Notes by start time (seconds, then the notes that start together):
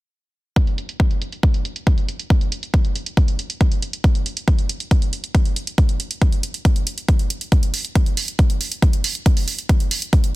0.56 kick, closed hi-hat
0.67 closed hi-hat
0.78 closed hi-hat
0.89 closed hi-hat
1.00 kick, closed hi-hat
1.11 closed hi-hat
1.22 closed hi-hat
1.32 closed hi-hat
1.43 kick, closed hi-hat
1.54 closed hi-hat
1.65 closed hi-hat
1.76 closed hi-hat
1.87 kick, closed hi-hat
1.98 closed hi-hat
2.09 closed hi-hat
2.19 closed hi-hat
2.30 kick, closed hi-hat
2.41 closed hi-hat
2.52 closed hi-hat
2.63 closed hi-hat
2.74 kick, closed hi-hat
2.85 closed hi-hat
2.95 closed hi-hat
3.06 closed hi-hat
3.17 kick, closed hi-hat
3.28 closed hi-hat
3.39 closed hi-hat
3.50 closed hi-hat
3.61 kick, closed hi-hat
3.72 closed hi-hat
3.82 closed hi-hat
3.93 closed hi-hat
4.04 kick, closed hi-hat
4.15 closed hi-hat
4.26 closed hi-hat
4.37 closed hi-hat
4.48 kick, closed hi-hat
4.59 closed hi-hat
4.69 closed hi-hat
4.80 closed hi-hat
4.91 kick, closed hi-hat
5.02 closed hi-hat
5.13 closed hi-hat
5.24 closed hi-hat
5.35 kick, closed hi-hat
5.45 closed hi-hat
5.56 closed hi-hat
5.67 closed hi-hat
5.78 kick, closed hi-hat
5.89 closed hi-hat
6.00 closed hi-hat
6.11 closed hi-hat
6.22 kick, closed hi-hat
6.32 closed hi-hat
6.43 closed hi-hat
6.54 closed hi-hat
6.65 kick, closed hi-hat
6.76 closed hi-hat
6.87 closed hi-hat
6.98 closed hi-hat
7.08 kick, closed hi-hat
7.19 closed hi-hat
7.30 closed hi-hat
7.41 closed hi-hat
7.52 kick, closed hi-hat
7.63 closed hi-hat
7.74 open hi-hat
7.85 closed hi-hat
7.95 kick, closed hi-hat
8.06 closed hi-hat
8.17 open hi-hat
8.28 closed hi-hat
8.39 kick, closed hi-hat
8.50 closed hi-hat
8.61 open hi-hat
8.72 closed hi-hat
8.82 kick, closed hi-hat
8.93 closed hi-hat
9.04 open hi-hat
9.15 closed hi-hat
9.26 kick, closed hi-hat
9.37 open hi-hat
9.48 open hi-hat
9.59 closed hi-hat
9.69 kick, closed hi-hat
9.80 closed hi-hat
9.91 open hi-hat
10.02 closed hi-hat
10.13 kick, closed hi-hat
10.24 closed hi-hat